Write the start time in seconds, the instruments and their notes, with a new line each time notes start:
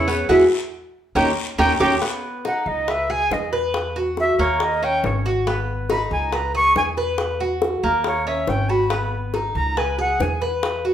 Already playing: upright bass E2, flute C#5
0.08 cuban tres B3, nylon-string guitar B3 C#4 G#4, short guiro
0.29 upright bass E2, nylon-string guitar G#3 B3 E4, cuban tres E4 F#4 G#4, flute E5, cowbell, long guiro
1.15 upright bass D#2, nylon-string guitar A#3 C#4 D#4, cuban tres C#4 D#4 G4, flute G5, cowbell, long guiro
1.58 upright bass D#2, nylon-string guitar A#3 C#4 D#4, cuban tres C#4 D#4 G4, flute G5, cowbell, long guiro
1.80 upright bass D#2, nylon-string guitar A#3 C#4 D#4, cuban tres C#4 D#4 G4, flute G5, cowbell, long guiro
2.02 cuban tres B3, high bongo
2.45 cuban tres D#4, flute F#5, high bongo
2.66 upright bass C#2, flute D#5, high bongo
2.88 cuban tres B4, flute E5, high bongo
3.10 cuban tres G#4, flute G#5
3.31 upright bass E2, flute D#5, high bongo, low bongo
3.53 cuban tres B4, high bongo
3.74 high bongo
3.96 cuban tres F#4
4.17 flute E5, high bongo
4.39 upright bass D#2, cuban tres A#3, flute C#5, high bongo
4.60 flute D#5, high bongo
4.83 cuban tres C#4, flute G5
5.03 upright bass G#1, flute C#5, high bongo, low bongo
5.25 cuban tres F#4, high bongo
5.47 cuban tres B3, high bongo
5.90 cuban tres D#4, flute B5, high bongo
6.11 upright bass C#2, flute G#5, high bongo
6.33 cuban tres B4, flute A#5, high bongo
6.55 cuban tres G#4, flute C#6
6.75 upright bass E2, flute G#5, high bongo, low bongo
6.97 cuban tres B4, high bongo
7.18 high bongo
7.40 cuban tres F#4
7.62 high bongo
7.83 upright bass D#2, cuban tres A#3, high bongo
8.04 flute C#5, high bongo
8.27 cuban tres C#4, flute E5
8.47 upright bass G#1, flute G5, high bongo, low bongo
8.69 cuban tres F#4, flute B5, high bongo
8.90 cuban tres B3, high bongo
9.34 cuban tres D#4, high bongo
9.55 upright bass C#2, flute A#5, high bongo
9.77 cuban tres B4, flute G#5, high bongo
9.98 cuban tres G#4, flute F#5
10.20 upright bass E2, flute G#5, high bongo, low bongo
10.41 cuban tres B4, high bongo
10.63 high bongo
10.85 cuban tres F#4